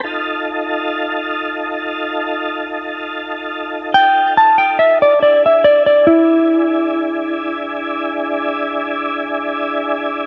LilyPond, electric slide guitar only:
\new Staff \with { instrumentName = "Electric slide guitar" } { \time 12/8 \key f \lydian \tempo 4. = 47 r1 r8 g''8 a''16 g''16 e''16 d''16 | d''16 e''16 d''16 d''16 e'2. r2 | }